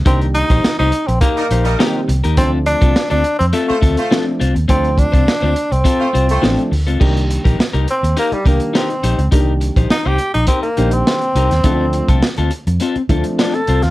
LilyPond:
<<
  \new Staff \with { instrumentName = "Clean electric guitar" } { \time 4/4 \key c \dorian \tempo 4 = 104 <ees' g' bes'>16 r8 <ees' g' c''>16 r16 <ees' g' c''>16 r8 <ees' g' bes'>16 r16 <ees' g' c''>16 r16 <ees' g' bes'>16 r8 <ees' g' bes'>16 | <c' f' a'>16 r8 <c' f' a'>16 r16 <c' f' a'>16 r8 <c' f' a'>16 r16 <c' f' a'>16 r16 <c' f' a'>16 r16 <c' f' c''>16 r16 | <c' f' a'>16 r8 <c' f' c''>16 r16 <c' f' c''>16 r8 <c' f' a'>16 r16 <c' f' c''>16 r16 <c' f' a'>16 r8 <c' f' a'>16 | <ees' g' bes'>16 r8 <ees' g' bes'>16 r16 <ees' g' bes'>16 r8 <ees' g' bes'>16 r16 <ees' g' bes'>16 r16 <ees' g' bes'>16 r16 <ees' g' c''>16 r16 |
<ees' g' bes'>16 r8 <ees' g' c''>16 r16 <ees' g' c''>16 r8 <ees' g' bes'>16 r16 <ees' g' c''>16 r8. <ees' g' bes'>16 r16 | <c' f' a'>16 r8 <c' f' a'>16 r16 <c' f' a'>16 r8 <c' f' a'>16 r16 <c' f' a'>16 r16 <c' f' a'>16 r16 <c' f' c''>16 r16 | }
  \new Staff \with { instrumentName = "Horn section" } { \time 4/4 \key c \dorian r2 r16 <g ees' bes'>16 r16 <g ees' bes'>8 r8. | r2 r16 <a f' c''>16 r16 <a f' c''>8 r8. | r2 r16 <a f' c''>16 r16 <a f' c''>8 r8. | r1 |
r1 | r1 | }
  \new Staff \with { instrumentName = "Tenor saxophone" } { \time 4/4 \key c \dorian c'8 ees'8. ees'8 c'16 bes4. r8 | c'8 d'8. d'8 c'16 a4. r8 | c'8 d'4~ d'16 c'4.~ c'16 r8 | r4. c'8 bes16 g16 bes8 c'4 |
r4 ees'16 g'8 ees'16 c'16 bes8 c'4~ c'16~ | c'4~ c'16 r4. r16 d'16 a'8 f'16 | }
  \new Staff \with { instrumentName = "Upright piano" } { \time 4/4 \key c \dorian <ees g bes d'>4 r2 <ees g bes c'>8 r8 | <f a c' d'>4 r2 <f a c' d'>8 r8 | <f a c' d'>4 r2 <f a c' d'>8 r8 | <ees g bes d'>4 r4. <ees g bes d'>8 r4 |
<d ees g bes d'>4 r4. <ees g bes d'>8 r4 | <ees f a c' d'>4 r4. <f a c' d'>8 r4 | }
  \new Staff \with { instrumentName = "Fingered electric bass" } { \clef bass \time 4/4 \key c \dorian c,8. bes,,16 r16 c,16 r16 bes,,16 r8 bes,,8 r8 c,16 ees,16 | d,8. c,16 r16 d,16 r16 f,16 r8 d,16 r8. c,16 ees,16 | d,8. c,16 r16 d,16 r16 c,16 r8 c,8 a,,16 r16 d,16 des,16 | c,8. bes,,16 r16 c,16 r16 ees,16 r8 c,16 r8. bes,,16 des,16 |
c,8. bes,,16 r16 c,16 r16 bes,,16 r8 bes,,8 r8 c,16 ees,16 | d,8. c,16 r16 d,16 r16 f,16 r8 d,16 r8. c,16 ees,16 | }
  \new DrumStaff \with { instrumentName = "Drums" } \drummode { \time 4/4 <hh bd>16 hh16 hh16 <hh bd>16 sn8 hh16 hh16 <hh bd>16 hh16 hh16 hh16 sn8 hh16 hh16 | <hh bd>8 hh16 <hh bd>16 sn16 hh16 hh16 hh16 hh8 <hh bd>16 hh16 sn8 hh16 hh16 | <hh bd>16 hh16 <hh bd>16 <hh bd>16 sn8 hh16 hh16 <hh bd>8 hh16 hh16 sn16 hh16 hho16 hh16 | <cymc bd>16 hh16 hh16 <hh bd>16 sn16 hh16 hh16 hh16 hh16 hh16 <hh bd>16 hh16 sn16 hh16 hh16 hh16 |
<hh bd>8 hh16 <hh bd>16 sn8 hh16 hh16 <hh bd>16 hh16 hh16 hh16 sn16 hh16 hh16 <hh sn>16 | <hh bd>8 hh16 <hh bd>16 sn16 hh16 hh16 hh16 hh16 hh16 <hh bd>16 hh16 sn16 hh16 hh16 <hh sn>16 | }
>>